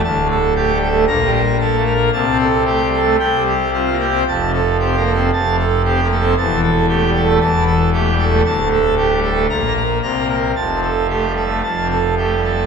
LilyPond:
<<
  \new Staff \with { instrumentName = "Pipe organ" } { \time 4/4 \key f \major \tempo 4 = 114 a''8 a'8 g'8 a'8 bes''8 bes'8 a'8 bes'8 | a''8 a'8 g'8 a'8 g''8 g'8 f'8 g'8 | a''8 a'8 g'8 a'8 a''8 a'8 g'8 a'8 | a''8 a'8 g'8 a'8 a''8 a'8 g'8 a'8 |
a''8 a'8 g'8 a'8 bes''8 bes'8 bes''8 bes'8 | a''8 a'8 g'8 a'8 a''8 a'8 g'8 a'8 | }
  \new Staff \with { instrumentName = "Pipe organ" } { \clef bass \time 4/4 \key f \major << { \tuplet 3/2 { d,8 a,8 r8 a8 g8 a8 bes,8 g8 r8 bes8 a8 bes8 } | \tuplet 3/2 { c8 c'8 r8 a8 g8 a8 c8 g8 r8 c'8 bes8 c'8 } | \tuplet 3/2 { f,8 c8 r8 c'8 bes8 c'8 f,8 c8 r8 c'8 bes8 c'8 } | \tuplet 3/2 { e,8 e8 r8 a8 g8 a8 e,8 e8 r8 a8 g8 a8 } |
\tuplet 3/2 { d,8 a,8 r8 a8 g8 a8 bes,8 bes8 r8 c8 bes8 r8 } | \tuplet 3/2 { f,8 c8 r8 a8 g8 a8 f,8 c8 r8 a8 g8 a8 } | } \\ { d,,2 bes,,2 | c,2 c,2 | f,,2 f,,2 | e,,2 e,,2 |
d,,2 bes,,4 c,4 | f,,2 f,,2 | } >> }
>>